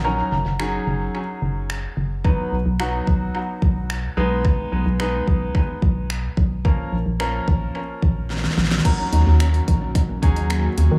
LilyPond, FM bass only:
\new Staff \with { instrumentName = "FM bass" } { \clef bass \time 4/4 \key dis \minor \tempo 4 = 109 ais,,8 fis,,16 fis,,8. fis,,8 r8 fis,,4 fis,,8~ | fis,,8 b,,16 b,,8. b,,8 r8 b,,4 b,,8~ | b,,8 b,,16 b,,8. b,,8 r8 b,,4 b,,8~ | b,,8 ais,,16 ais,,8. ais,,8 r8 ais,,4 ais,,8 |
r8 dis,16 dis,8. ais,,4 dis,4 dis,16 dis16 | }